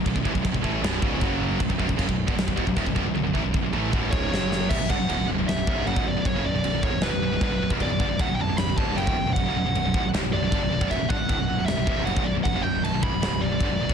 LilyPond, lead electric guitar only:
\new Staff \with { instrumentName = "Lead electric guitar" } { \time 4/4 \key b \minor \tempo 4 = 155 r1 | r1 | r2 r8 cis''4. | e''8 fis''4 r8 e''4 fis''8 d''8 |
cis''8 d''4 cis''8 b'4 b'8. r16 | d''4 fis''16. g''32 a''8 b''8 a''8 g''4 | fis''2 r8 d''4. | e''8 fis''4. e''4 fis''8 d''8 |
fis''8 g''8 a''8 b''4 d''4. | }